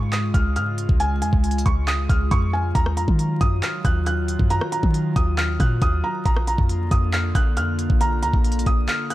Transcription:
Already playing: G#2 C#3 G#3 F4
0.12 D#6, clap, closed hi-hat
0.34 C#2 F6, kick, closed hi-hat
0.56 G#2 F6, closed hi-hat
0.78 closed hi-hat
0.89 C#2, kick
1.00 G#5, closed hi-hat
1.22 F2 G#5, closed hi-hat
1.33 C#2, kick
1.44 closed hi-hat
1.51 closed hi-hat
1.58 closed hi-hat
1.66 C#2 C#6, kick, closed hi-hat
1.88 D#6, clap, closed hi-hat
2.09 C#2 F6, kick, closed hi-hat
2.31 F2 C#6, kick, closed hi-hat
2.53 G#5
2.75 D#2 D#3 F#3 A#5, kick, closed hi-hat
2.86 cross-stick
2.97 F2 A#5, closed hi-hat
3.08 D#3, kick
3.19 closed hi-hat
3.41 F#2 D#6, kick, closed hi-hat
3.63 F6, clap, closed hi-hat
3.85 D#2 F#6, kick, closed hi-hat
4.06 F#6, closed hi-hat
4.28 closed hi-hat
4.39 F#2, kick
4.50 A#5, closed hi-hat
4.61 cross-stick
4.72 A#5, closed hi-hat
4.83 D#3, kick
4.94 closed hi-hat
5.16 D#2 D#6, kick, closed hi-hat
5.38 F6, clap, closed hi-hat
5.60 A#2 F#6, kick, closed hi-hat
5.82 D#2 D#6, kick, closed hi-hat
6.04 A#5
6.25 A#1 D3 A#3 A#5, kick, closed hi-hat
6.37 cross-stick
6.47 A#5, closed hi-hat
6.58 F2, kick
6.69 closed hi-hat
6.91 F2 D#6, kick, closed hi-hat
7.13 F6, clap, closed hi-hat
7.35 A#1 F#6, kick, closed hi-hat
7.57 F2 F6, closed hi-hat
7.79 closed hi-hat
7.90 A#1, kick
8.01 A#5, closed hi-hat
8.23 D2 A#5, closed hi-hat
8.34 A#1, kick
8.44 closed hi-hat
8.52 closed hi-hat
8.59 closed hi-hat
8.66 A#1 D#6, kick, closed hi-hat
8.88 F6, clap, closed hi-hat
9.10 F#6, closed hi-hat

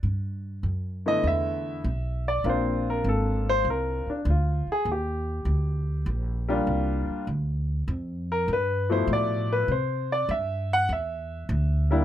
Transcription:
0.03 G2
0.63 F#2
1.06 D3 A3 B3 E4 D#5
1.24 E2 E5
1.84 B1
2.28 D5
2.44 A#1 A#3 C4 D4 F4
2.49 C5
2.90 A#4
3.04 G#1
3.09 A4
3.49 C5
3.65 C2
3.70 A#4
4.07 D4, muted upright bass stroke
4.25 D2
4.30 F4
4.67 muted upright bass stroke
4.72 G#4
4.85 D#2
4.92 G4
5.45 D2
6.06 A#1
6.48 G3 A#3 D4 F4
6.67 C2
7.09 muted upright bass stroke
7.27 D2
7.88 F2
8.32 A#4
8.48 G2
8.53 B4
8.89 B2 F3 A3 E4 C5
9.07 A2
9.13 D5
9.53 B4
9.68 C3 C5
10.12 D5
10.29 G2 E5
10.73 F#5
10.89 E2 E5
11.49 D2
11.91 G3 A#3 D4 E4

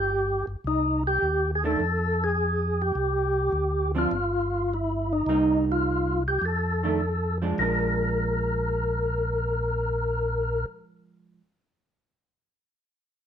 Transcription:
Already playing: G1 G4
0.47 G1
0.64 C2 D#4
1.07 G4
1.22 D#2
1.55 G#4
1.64 D#3 A3 D4 A4
1.80 F2
2.24 G#4
2.82 G4
2.95 C2
3.52 D2
3.95 F3 C4 D4 F4
4.11 G1
4.74 E4
5.13 D#4
5.26 C2 G3 A#3 D#4
5.72 F4
6.28 G4
6.42 F2 A4
6.83 D#3 A3 D4
7.42 F3 G#3 D4
7.58 A#1 F3 G#3 D4 A#4

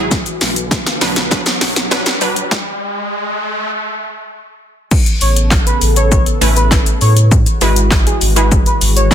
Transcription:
Already playing: G#1 F#3 E4 F#4 G#4, riser
0.11 D3 B3, kick, snare, shaker
0.26 closed hi-hat, shaker
0.41 B1, snare, open hi-hat, shaker
0.56 closed hi-hat, shaker
0.71 kick, snare, shaker
0.86 snare, closed hi-hat, shaker
1.01 B1 F#3 D4 B4, snare, open hi-hat, shaker
1.16 snare, closed hi-hat, shaker
1.31 F#3 D4 B4, kick, snare, shaker
1.46 snare, closed hi-hat, shaker
1.61 B1, snare, open hi-hat, shaker
1.76 snare, closed hi-hat, shaker
1.91 F#3 D4 B4, snare, shaker
2.06 snare, closed hi-hat, shaker
2.21 B1 F#3 D4 B4, open hi-hat, shaker
2.36 closed hi-hat, shaker
2.51 kick, snare
4.91 C#3 B3 A4, kick, crash, shaker
5.06 closed hi-hat, shaker
5.21 A1 C#5, open hi-hat, shaker
5.37 closed hi-hat, shaker
5.51 kick, snare, clap, shaker
5.66 B4, closed hi-hat, shaker
5.81 A1, open hi-hat, shaker
5.96 C#5, closed hi-hat, shaker
6.12 C#5, kick, shaker
6.26 closed hi-hat, shaker
6.41 A1 A3 C#4 E4 B4, open hi-hat, shaker
6.56 B4, closed hi-hat, shaker
6.71 A3 C#4 E4 B4, kick, snare, clap, shaker
6.86 closed hi-hat, shaker
7.01 A2 C#5, open hi-hat, shaker
7.17 closed hi-hat, shaker
7.31 E3 G#3 F#4, kick, shaker
7.46 closed hi-hat, shaker
7.61 G#1 G#3 E4 F#4 B4, open hi-hat, shaker
7.76 closed hi-hat, shaker
7.91 G#3 E4 F#4 B4, kick, snare, clap, shaker
8.06 G#4, closed hi-hat, shaker
8.21 G#1, open hi-hat, shaker
8.36 G#3 E4 F#4 G#4 B4, closed hi-hat, shaker
8.52 kick, shaker
8.66 B4, closed hi-hat, shaker
8.81 G#1, open hi-hat, shaker
8.96 C#5, closed hi-hat, shaker
9.11 G#3 E4 B4, kick, shaker

